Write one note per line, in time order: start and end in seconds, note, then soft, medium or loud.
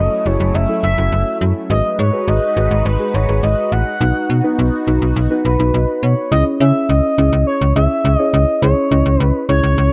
0.00 1.68 F#3 medium
0.00 1.68 A3 medium
0.00 1.68 C#4 medium
0.00 0.20 E4 medium
0.00 1.68 E4 medium
0.00 0.20 F#4 medium
0.00 0.20 A4 medium
0.00 0.28 D#5 loud
0.26 0.38 F#1 medium
0.26 0.63 E4 medium
0.26 0.63 F#4 medium
0.26 0.63 G#4 medium
0.26 0.56 C#5 loud
0.40 0.52 F#1 loud
0.54 0.66 F#1 loud
0.54 0.83 E5 loud
0.69 0.94 E4 medium
0.69 0.94 F#4 medium
0.69 0.94 A4 medium
0.83 0.95 F#1 loud
0.83 1.37 E5 loud
0.98 1.10 F#1 loud
0.98 1.61 E4 medium
0.98 1.61 F#4 medium
0.98 1.61 A4 medium
1.12 1.24 F#1 loud
1.41 1.53 F#2 loud
1.70 1.82 G#1 loud
1.70 3.98 G#3 medium
1.70 3.98 D#4 medium
1.70 3.98 F#4 medium
1.70 2.08 F#4 medium
1.70 2.08 G#4 medium
1.70 2.08 B4 medium
1.70 3.98 B4 medium
1.70 1.97 D#5 loud
1.99 2.11 G#2 loud
1.99 2.30 C#5 medium
2.13 2.51 F#4 medium
2.13 2.51 G#4 medium
2.13 2.51 B4 medium
2.28 2.40 G#1 loud
2.28 2.87 D#5 medium
2.56 2.69 G#1 loud
2.56 2.94 F#4 medium
2.56 2.94 G#4 medium
2.56 2.94 B4 medium
2.71 2.83 G#1 loud
2.85 2.97 G#1 loud
2.85 3.16 B4 medium
3.00 3.25 F#4 medium
3.00 3.25 G#4 medium
3.00 3.25 B4 medium
3.14 3.26 G#1 loud
3.14 3.44 C#5 loud
3.29 3.41 G#1 medium
3.29 3.92 F#4 medium
3.29 3.92 G#4 medium
3.29 3.92 B4 medium
3.43 3.55 G#1 loud
3.43 3.73 D#5 loud
3.72 3.84 A1 loud
3.72 4.58 F#5 loud
4.01 4.13 B1 loud
4.01 6.29 B3 medium
4.01 6.29 D#4 medium
4.01 4.39 D#4 medium
4.01 4.39 F#4 medium
4.01 6.29 F#4 medium
4.01 4.39 B4 medium
4.30 4.42 B2 loud
4.44 4.82 D#4 medium
4.44 4.82 F#4 medium
4.44 4.82 B4 loud
4.59 4.71 B1 loud
4.87 4.99 B1 medium
4.87 5.25 D#4 medium
4.87 5.25 F#4 medium
4.87 5.25 B4 loud
5.02 5.14 B1 loud
5.16 5.28 B1 loud
5.31 5.56 D#4 medium
5.31 5.56 F#4 medium
5.31 5.56 B4 loud
5.45 5.57 B1 loud
5.45 6.04 B4 medium
5.59 5.71 B1 loud
5.59 6.22 D#4 medium
5.59 6.22 F#4 medium
5.59 6.22 B4 loud
5.74 5.86 B1 loud
5.74 6.01 D#5 medium
6.03 6.15 B2 loud
6.03 6.31 C#5 medium
6.03 6.30 B5 medium
6.32 6.44 C#2 loud
6.32 6.57 C#4 medium
6.32 6.57 E4 medium
6.32 6.57 G#4 medium
6.32 6.57 C#5 medium
6.32 6.45 D#5 loud
6.60 6.72 C#3 loud
6.60 7.11 C#4 medium
6.60 7.11 E4 medium
6.60 7.11 G#4 medium
6.60 7.11 C#5 medium
6.60 6.91 E5 loud
6.89 7.01 C#2 loud
6.89 7.46 D#5 loud
7.18 7.30 C#2 loud
7.18 7.68 C#4 medium
7.18 7.68 E4 medium
7.18 7.68 G#4 medium
7.18 7.68 C#5 medium
7.33 7.44 C#2 loud
7.47 7.74 C#5 medium
7.61 7.73 C#2 loud
7.76 7.88 C#2 loud
7.76 8.13 C#4 medium
7.76 8.14 E4 medium
7.76 8.14 G#4 medium
7.76 8.14 E5 medium
7.76 8.15 E5 loud
8.05 8.17 C#2 loud
8.15 8.33 D#5 loud
8.19 8.57 C#4 medium
8.19 8.57 E4 medium
8.19 8.57 G#4 medium
8.19 8.57 C#5 medium
8.33 8.45 C#2 loud
8.33 8.62 D#5 medium
8.62 8.74 C#2 loud
8.62 8.87 C#4 medium
8.62 8.87 E4 medium
8.62 8.87 G#4 medium
8.62 8.87 C#5 medium
8.62 9.21 C#5 loud
8.91 9.03 C#2 loud
8.91 9.42 C#4 medium
8.91 9.42 E4 medium
8.91 9.42 G#4 medium
8.91 9.42 D#5 medium
9.06 9.18 C#2 medium
9.20 9.32 C#2 loud
9.20 9.45 B4 loud
9.49 9.61 C#2 loud
9.49 9.93 C#4 medium
9.49 9.93 E4 medium
9.49 9.93 G#4 medium
9.49 9.93 C#5 loud
9.49 9.93 C#5 medium
9.63 9.75 C#2 loud
9.78 9.90 C#2 loud